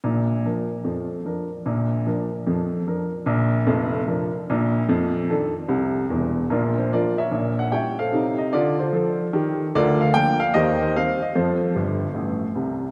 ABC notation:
X:1
M:4/4
L:1/8
Q:"Swing" 1/4=149
K:Bb
V:1 name="Upright piano"
z8 | z8 | z8 | z8 |
[DFB] c [FBd] [B_d=e]2 _g [d_f=g] [Ac=f]- | [Acf] e d [FAc]4 z | [FBd] f g f [Gce] c [cf] e | [FAc]6- [FAc] z |]
V:2 name="Upright piano" clef=bass
[B,,,B,,]2 [F,DB]2 [F,,F,]2 [F,DB]2 | [B,,,B,,]2 [F,DB]2 [F,,F,]2 [F,DB]2 | [B,,,B,,]2 [F,,,F,,]2 [F,DB]2 [B,,,B,,]2 | [F,,F,]2 [E,DA]2 [C,,C,]2 [=E,,,=E,,]2 |
[B,,,B,,]2 [F,D]2 [B,,,B,,]2 [G,_D_F]2 | [C,E]2 [D,F]2 [F,A]2 [E,G]2 | [D,,D,]2 [F,B,D]2 [E,,E,]2 [G,C]2 | [F,,F,]2 [G,,,G,,]2 [A,,,A,,]2 [C,,C,]2 |]